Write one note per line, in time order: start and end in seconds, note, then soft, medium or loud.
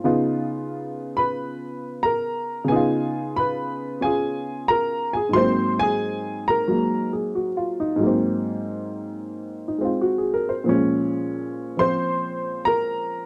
0.04 2.63 C#3 medium
0.04 2.67 B3 medium
0.04 2.70 D#4 medium
0.04 2.71 F4 medium
1.17 2.01 B4 medium
1.17 2.00 B5 medium
2.03 2.67 A#4 medium
2.03 2.72 A#5 medium
2.64 5.33 C#3 medium
2.64 5.35 B3 medium
2.64 3.38 G#5 medium
2.72 5.37 D#4 medium
2.72 3.33 G#4 medium
2.76 4.02 F4 medium
3.36 4.00 B4 medium
3.36 3.99 B5 medium
4.01 5.35 C#4 soft
4.01 5.36 F4 soft
4.01 4.66 G#4 medium
4.01 4.71 G#5 medium
4.68 5.12 A#4 medium
4.68 5.11 A#5 medium
5.13 5.35 G#4 medium
5.13 5.36 G#5 medium
5.29 7.94 G#2 medium
5.33 6.66 F#3 soft
5.33 6.69 A#3 soft
5.33 5.78 C5 medium
5.33 5.81 C6 medium
5.41 8.04 C4 medium
5.79 6.44 G#4 medium
5.79 6.43 G#5 loud
6.48 7.11 A#4 medium
6.48 7.10 A#5 medium
6.68 7.98 F#3 soft
6.68 8.02 G#3 soft
6.68 8.02 A#3 soft
7.13 7.47 G#4 soft
7.35 7.77 F#4 soft
7.57 7.92 F4 medium
7.80 8.14 D#4 medium
7.96 10.64 G#2 medium
7.96 10.66 F#3 soft
8.03 10.68 A#3 soft
8.03 9.80 C4 medium
9.68 9.88 D#4 soft
9.78 10.66 G#3 soft
9.78 10.68 C4 soft
9.85 10.07 F4 soft
10.01 10.32 F#4 soft
10.18 10.46 G#4 soft
10.34 10.54 A#4 medium
10.49 10.73 C5 medium
10.64 13.26 A#2 medium
10.64 11.76 F3 soft
10.64 13.26 G#3 soft
10.69 13.26 C#4 medium
11.77 13.26 F3 soft
11.77 13.26 C4 soft
11.77 12.63 C5 medium
11.77 12.69 C6 medium
12.65 13.26 A#4 medium
12.65 13.26 A#5 medium